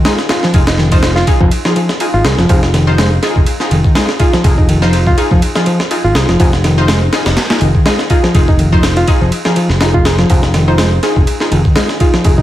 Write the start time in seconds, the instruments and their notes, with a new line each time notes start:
0.05 reed electric piano G#3, synth stab D#4 F4 G#4, snare, ride
0.18 snare
0.29 synth stab D#4 F4 G#4, reed electric piano F4, snare, ride
0.43 reed electric piano F3, snare
0.54 fingered electric bass F1, synth stab D#4 F4 G#4, kick, ride
0.67 reed electric piano D#4, snare, ride
0.78 reed electric piano D#3, snare
0.92 reed electric piano F3, synth stab D#4 F4 C5, kick, ride
1.03 snare, ride
1.16 reed electric piano F4, snare
1.27 synth stab D#4 F4 G#4, kick, ride
1.40 fingered electric bass F1, reed electric piano F3, kick
1.51 ride
1.65 reed electric piano F3, synth stab D#4 F4 G#4, snare
1.76 reed electric piano F3, ride
1.89 snare
2.00 synth stab D#4 F4 G#4, ride
2.14 fingered electric bass G#1, reed electric piano F4
2.24 fingered electric bass C2, synth stab D#4 F4 G#4, snare, ride
2.38 fingered electric bass F1, reed electric piano F3, snare
2.49 fingered electric bass F1, reed electric piano F3, synth stab D#4 F4 G#4, kick, ride
2.63 snare
2.74 reed electric piano D#3, snare, ride
2.87 synth stab D#4 F4 C5
2.98 reed electric piano G#3, snare, ride
3.22 synth stab D#4 F4 G#4, snare, ride
3.36 fingered electric bass F1, kick
3.46 ride
3.60 synth stab D#4 F4 G#4, snare
3.71 fingered electric bass F1, reed electric piano D#3, ride
3.85 kick
3.95 reed electric piano G#3, synth stab D#4 F4 G#4, snare, ride
4.09 snare
4.19 synth stab D#4 F4 G#4, reed electric piano F4, kick, ride
4.33 reed electric piano F3, snare
4.44 fingered electric bass F1, synth stab D#4 F4 G#4, kick, ride
4.58 reed electric piano D#4, kick
4.69 reed electric piano D#3, ride
4.82 reed electric piano F3, synth stab D#4 F4 C5, snare
4.93 ride
5.07 reed electric piano F4, kick
5.17 synth stab D#4 F4 G#4, ride
5.31 fingered electric bass F1, reed electric piano F3, kick
5.42 ride
5.55 reed electric piano F3, synth stab D#4 F4 G#4, snare
5.66 reed electric piano F3, ride
5.80 snare
5.91 synth stab D#4 F4 G#4, ride
6.04 fingered electric bass G#1, reed electric piano F4
6.15 fingered electric bass C2, synth stab D#4 F4 G#4, snare, ride
6.29 fingered electric bass F1, reed electric piano F3, snare
6.39 fingered electric bass F1, reed electric piano F3, synth stab D#4 F4 G#4, kick, ride
6.53 snare
6.64 reed electric piano D#3, snare, ride
6.78 synth stab D#4 F4 C5
6.88 reed electric piano G#3, snare, ride
7.13 synth stab D#4 F4 G#4, snare, ride
7.26 fingered electric bass F1, snare, ride
7.37 snare, ride
7.50 synth stab D#4 F4 G#4, snare, ride
7.61 fingered electric bass F1, reed electric piano D#3, ride
7.75 kick
7.86 reed electric piano G#3, synth stab D#4 F4 G#4, snare, ride
7.99 snare
8.10 synth stab D#4 F4 G#4, reed electric piano F4, kick, ride
8.24 reed electric piano F3, snare
8.34 fingered electric bass F1, synth stab D#4 F4 G#4, kick, ride
8.48 reed electric piano D#4, kick
8.59 reed electric piano D#3, ride
8.72 reed electric piano F3, synth stab D#4 F4 C5, kick
8.83 snare, ride
8.97 reed electric piano F4, ride
9.08 synth stab D#4 F4 G#4, kick, ride
9.21 fingered electric bass F1, reed electric piano F3
9.32 ride
9.45 reed electric piano F3, synth stab D#4 F4 G#4, snare
9.56 reed electric piano F3, ride
9.69 fingered electric bass F1, snare
9.81 synth stab D#4 F4 G#4, snare, ride
9.94 reed electric piano F4, kick
10.05 synth stab D#4 F4 G#4, snare, ride
10.18 reed electric piano F3, snare
10.30 fingered electric bass F1, reed electric piano F3, synth stab D#4 F4 G#4, kick, ride
10.43 snare
10.54 reed electric piano D#3, snare, ride
10.68 synth stab D#4 F4 C5
10.78 reed electric piano G#3, snare, ride
11.03 synth stab D#4 F4 G#4, snare, ride
11.16 fingered electric bass F1, kick
11.27 ride
11.40 synth stab D#4 F4 G#4, snare
11.51 fingered electric bass F1, reed electric piano D#3, ride
11.65 kick
11.76 reed electric piano G#3, synth stab D#4 F4 G#4, snare, ride
11.89 snare
12.00 synth stab D#4 F4 G#4, reed electric piano F4, kick, ride
12.13 reed electric piano F3, snare
12.24 fingered electric bass F1, synth stab D#4 F4 G#4, kick, ride
12.38 reed electric piano D#4, kick